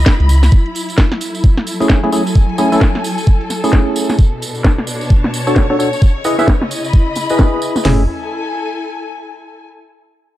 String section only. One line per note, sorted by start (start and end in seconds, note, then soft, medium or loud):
0.00 4.93 E4 medium
0.00 0.52 D#5 medium
0.00 1.37 B5 medium
0.52 4.18 F#3 medium
1.26 4.93 A4 medium
1.96 4.18 G#5 medium
4.19 6.02 B2 loud
4.49 6.02 D4 medium
4.67 6.76 C#5 medium
5.03 6.02 A5 medium
6.02 7.85 C#3 medium
6.16 7.85 D#5 medium
6.28 7.84 E4 medium
6.86 7.85 B5 medium
7.85 9.64 E4 medium
7.93 9.64 A4 medium
8.01 9.64 G#5 medium